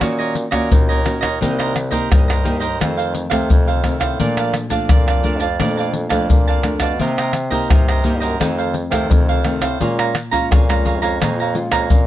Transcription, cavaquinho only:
0.00 0.16 F#4 soft
0.00 0.17 A#4 soft
0.00 0.17 C#5 medium
0.00 0.17 D#5 soft
0.19 0.34 A#4 soft
0.19 0.35 C#5 medium
0.19 0.34 D#5 medium
0.35 muted cavaquinho stroke soft
0.51 0.87 A#4 medium
0.51 0.86 C#5 medium
0.51 0.86 D#5 medium
0.89 1.22 A#4 medium
0.89 1.21 C#5 medium
0.89 1.20 D#5 medium
1.21 1.39 A#4 medium
1.21 1.39 C#5 medium
1.21 1.38 D#5 medium
1.41 1.57 D#4 soft
1.41 1.57 A#4 soft
1.41 1.57 C5 soft
1.41 1.57 D#5 medium
1.58 1.74 A#4 medium
1.58 1.74 C5 medium
1.58 1.74 D#5 medium
1.75 muted cavaquinho stroke soft
1.91 2.09 A#4 medium
1.91 2.09 C5 medium
1.91 2.08 D#5 medium
2.10 2.26 D#4 soft
2.10 2.27 A#4 soft
2.10 2.27 C5 soft
2.10 2.27 D#5 medium
2.28 2.43 A#4 medium
2.28 2.44 C5 medium
2.28 2.44 D#5 medium
2.44 2.61 D#4 soft
2.44 2.61 A#4 soft
2.44 2.60 C5 soft
2.44 2.59 D#5 medium
2.60 2.79 A#4 medium
2.60 2.78 C5 medium
2.60 2.78 D#5 medium
2.79 2.96 D#4 soft
2.79 2.96 A4 soft
2.79 2.97 C5 soft
2.79 2.96 F5 soft
2.97 3.13 A4 soft
2.97 3.13 C5 medium
2.97 3.13 F5 medium
3.14 muted cavaquinho stroke soft
3.30 3.66 A4 soft
3.30 3.66 C5 medium
3.30 3.65 F5 medium
3.68 4.01 A4 medium
3.68 4.00 C5 medium
3.68 3.99 F5 medium
4.00 4.19 A4 medium
4.00 4.18 C5 medium
4.00 4.17 F5 medium
4.19 4.36 A#4 soft
4.19 4.36 D5 soft
4.19 4.37 F5 medium
4.19 4.36 A5 medium
4.37 4.53 D5 medium
4.37 4.54 F5 medium
4.37 4.54 A5 medium
4.54 muted cavaquinho stroke soft
4.70 4.89 D5 soft
4.70 4.88 F5 medium
4.70 4.88 A5 medium
4.89 5.06 A#4 soft
4.89 5.06 D5 medium
4.89 5.07 F5 medium
4.89 5.06 A5 soft
5.07 5.23 D5 medium
5.07 5.24 F5 medium
5.07 5.24 A5 medium
5.24 5.41 A#4 soft
5.24 5.41 D5 soft
5.24 5.40 F5 medium
5.24 5.39 A5 soft
5.40 5.59 D5 medium
5.40 5.58 F5 medium
5.40 5.58 A5 medium
5.59 5.76 A#4 soft
5.59 5.76 D5 soft
5.59 5.77 F5 medium
5.59 5.76 A5 soft
5.77 5.93 D5 soft
5.77 5.93 F5 medium
5.77 5.94 A5 medium
5.94 muted cavaquinho stroke soft
6.09 6.46 D5 medium
6.09 6.45 F5 medium
6.09 6.45 A5 medium
6.48 6.81 D5 soft
6.48 6.80 F5 medium
6.48 6.79 A5 medium
6.80 6.99 D5 medium
6.80 6.98 F5 medium
6.80 6.98 A5 medium
7.00 7.16 D#4 medium
7.00 7.17 A#4 soft
7.00 7.17 C5 medium
7.00 7.17 D#5 soft
7.18 7.33 A#4 soft
7.18 7.33 C5 medium
7.18 7.34 D#5 medium
7.34 muted cavaquinho stroke soft
7.50 7.69 A#4 medium
7.50 7.68 C5 medium
7.50 7.68 D#5 medium
7.70 7.86 D#4 soft
7.70 7.87 A#4 soft
7.70 7.87 C5 medium
7.70 7.87 D#5 soft
7.88 8.04 A#4 medium
7.88 8.05 C5 medium
7.88 8.04 D#5 medium
8.04 8.21 D#4 soft
8.04 8.21 A#4 medium
8.04 8.20 C5 medium
8.04 8.19 D#5 medium
8.20 8.39 A#4 medium
8.20 8.38 C5 medium
8.20 8.38 D#5 medium
8.40 8.56 D#4 soft
8.40 8.56 A4 soft
8.40 8.57 C5 soft
8.40 8.57 F5 soft
8.58 8.74 A4 soft
8.58 8.74 C5 medium
8.58 8.74 F5 medium
8.74 muted cavaquinho stroke soft
8.91 9.27 A4 medium
8.91 9.26 C5 medium
8.91 9.26 F5 medium
9.29 9.62 A4 medium
9.29 9.61 C5 medium
9.29 9.60 F5 medium
9.61 9.79 A4 medium
9.61 9.79 C5 medium
9.61 9.78 F5 medium
9.81 9.97 G#4 soft
9.81 9.97 C#5 medium
9.81 9.98 F5 soft
9.81 9.98 A#5 medium
9.99 10.14 C#5 medium
9.99 10.15 F5 medium
9.99 10.14 A#5 medium
10.15 muted cavaquinho stroke soft
10.31 10.50 C#5 medium
10.31 10.49 F5 medium
10.31 10.48 A#5 medium
10.51 10.67 G#4 soft
10.51 10.67 C#5 medium
10.51 10.68 F5 medium
10.51 10.68 A#5 medium
10.69 10.85 C#5 medium
10.69 10.85 F5 medium
10.69 10.85 A#5 medium
10.85 11.01 G#4 soft
10.85 11.02 C#5 medium
10.85 11.02 F5 soft
10.85 11.01 A#5 medium
11.02 11.19 C#5 medium
11.02 11.19 F5 medium
11.02 11.18 A#5 medium
11.22 11.37 G#4 soft
11.22 11.37 C#5 soft
11.22 11.38 F5 soft
11.22 11.38 A#5 soft
11.40 11.56 C#5 soft
11.40 11.56 F5 medium
11.40 11.55 A#5 medium
11.56 muted cavaquinho stroke soft
11.72 12.07 C#5 medium
11.72 12.07 F5 medium
11.72 12.06 A#5 medium

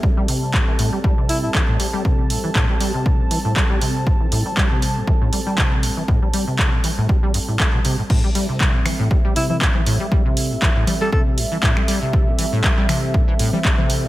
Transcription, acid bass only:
0.03 0.11 G3 medium
0.17 0.27 G3 loud
0.28 0.55 C3 medium
0.54 0.61 A2 medium
0.68 0.74 E3 medium
0.79 0.90 A2 loud
0.93 0.99 G3 medium
1.04 1.16 G3 loud
1.18 1.45 C3 medium
1.43 1.49 A2 medium
1.55 1.62 E3 medium
1.68 1.78 A2 loud
1.80 1.87 G3 medium
1.93 2.03 G3 loud
2.05 2.32 C3 medium
2.30 2.38 A2 medium
2.44 2.50 E3 medium
2.55 2.67 A2 loud
2.69 2.75 G3 medium
2.80 2.92 G3 loud
2.94 3.21 C3 medium
3.20 3.26 A2 medium
3.31 3.39 E3 medium
3.45 3.54 A2 loud
3.56 3.64 G3 medium
3.70 3.79 G3 loud
3.81 4.08 C3 medium
4.07 4.14 A2 medium
4.20 4.27 E3 medium
4.32 4.43 A2 loud
4.46 4.52 G3 medium
4.57 4.68 G3 loud
4.71 4.98 C3 medium
4.96 5.02 A2 medium
5.07 5.15 E3 medium
5.21 5.31 A2 loud
5.33 5.40 G3 medium
5.46 5.56 G3 loud
5.58 5.85 C3 medium
5.83 5.91 A2 medium
5.97 6.03 E3 medium
6.08 6.20 A2 loud
6.22 6.28 G3 medium
6.34 6.45 G3 loud
6.47 6.74 C3 medium
6.73 6.79 A2 medium
6.84 6.92 E3 medium
6.98 7.07 A2 loud
7.09 7.17 G3 medium
7.23 7.32 G3 loud
7.34 7.39 G2 medium
7.48 7.58 A2 medium
7.60 7.71 A3 medium
7.73 7.80 B2 medium
7.85 7.96 C3 loud
7.99 8.02 A2 medium
8.10 8.21 A2 loud
8.24 8.30 G3 medium
8.35 8.47 G3 loud
8.49 8.76 C3 medium
8.74 8.80 A2 medium
8.86 8.93 E3 medium
8.99 9.09 A2 loud
9.11 9.18 G3 medium
9.25 9.34 G3 loud
9.36 9.63 C3 medium
9.61 9.69 A2 medium
9.75 9.81 E3 medium
9.86 9.98 A2 loud
10.00 10.07 G3 medium
10.12 10.23 G3 loud
10.25 10.52 C3 medium
10.51 10.57 A2 medium
10.62 10.70 E3 medium
10.76 10.85 A2 loud
10.87 10.95 G3 medium
11.01 11.10 G3 loud
11.12 11.39 C3 medium
11.38 11.45 A2 medium
11.51 11.58 E3 medium
11.63 11.74 A2 loud
11.77 11.83 G3 medium
11.88 11.99 G3 loud
12.02 12.29 C3 medium
12.27 12.33 A2 medium
12.39 12.46 E3 medium
12.52 12.62 A2 loud
12.64 12.71 G3 medium
12.78 12.87 G3 loud
12.89 13.16 C3 medium
13.14 13.22 A2 medium
13.28 13.34 E3 medium
13.39 13.51 A2 loud
13.53 13.59 G3 medium
13.65 13.76 G3 loud
13.78 14.05 C3 medium
14.04 14.08 A2 medium

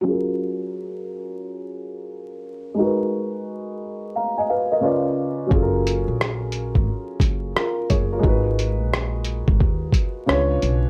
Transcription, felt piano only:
0.01 2.72 F#3 medium
0.01 2.73 C#4 medium
0.06 2.74 F4 medium
0.06 2.75 G#4 medium
0.11 2.77 A#4 medium
2.74 4.77 G#3 medium
2.74 4.78 D#4 medium
2.79 4.79 F#4 medium
2.79 3.80 A#4 medium
2.84 3.81 B4 medium
4.16 4.36 F5 soft
4.16 4.36 A#5 medium
4.38 4.49 D#5 medium
4.38 4.48 G#5 medium
4.50 4.71 B4 medium
4.50 4.70 F5 medium
4.71 5.04 A#4 soft
4.71 5.04 D#5 medium
4.80 5.50 C#3 medium
4.80 5.47 C#4 medium
4.80 5.50 F4 medium
4.80 5.51 B4 medium
4.85 5.52 D5 medium
5.46 8.17 F#3 medium
5.46 8.18 C#4 medium
5.51 7.51 F4 medium
5.51 7.53 G#4 medium
5.56 5.62 A4 medium
5.62 7.55 A#4 medium
7.56 7.88 F4 soft
7.56 7.88 A#4 medium
7.90 8.11 G#4 medium
7.90 8.11 C#5 medium
8.12 8.45 F4 soft
8.12 8.25 A#4 medium
8.19 10.22 G#3 medium
8.19 10.23 D#4 medium
8.24 10.24 F#4 medium
8.24 10.25 A#4 medium
8.29 10.27 B4 medium
10.26 10.90 C#3 medium
10.26 10.90 C#4 medium
10.26 10.90 F4 medium
10.26 10.90 B4 medium
10.31 10.90 D4 medium

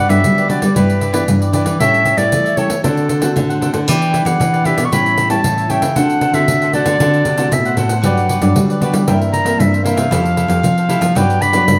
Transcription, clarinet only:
0.00 0.11 F#5 loud
0.10 0.49 E5 loud
0.50 0.74 D5 medium
0.76 1.50 B4 medium
1.80 2.19 E5 loud
2.17 2.59 D5 loud
2.57 2.83 C#5 medium
2.84 3.58 A4 medium
3.89 4.28 G5 medium
4.27 4.67 F#5 medium
4.66 4.87 E5 medium
4.85 4.94 C#6 medium
4.93 5.30 B5 loud
5.30 5.72 A5 loud
5.70 5.98 G5 medium
5.97 6.36 F#5 loud
6.34 6.73 E5 loud
6.74 7.54 D5 loud
7.53 7.77 E5 medium
7.78 8.77 F#5 medium
9.08 9.20 G5 medium
9.33 9.62 A#5 medium
9.60 9.84 E5 medium
9.84 11.18 F5 medium
11.16 11.43 G5 loud
11.42 11.79 B5 loud

